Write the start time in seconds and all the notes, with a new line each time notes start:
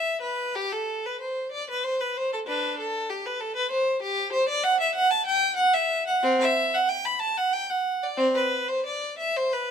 Already playing: E5
0.21 B4
0.55 G4
0.72 A4
1.06 B4
1.21 C5
1.52 D5
1.70 B4
1.84 C5
2.00 B4
2.17 C5
2.33 A4
2.47 D4 B4
2.79 A4
3.10 G4
3.26 B4
3.40 A4
3.56 B4
3.71 C5
4.02 G4
4.33 C5
4.49 D5
4.64 F#5
4.80 E5
4.95 F#5
5.11 A5
5.26 G5
5.56 F#5
5.74 E5
6.07 F#5
6.23 C4
6.41 E5
6.74 F#5
6.89 G5
7.05 B5
7.20 A5
7.37 F#5
7.53 G5
7.70 F#5
8.03 D5
8.17 C4
8.35 B4
8.68 C5
8.86 D5
9.18 E5
9.37 C5
9.53 B4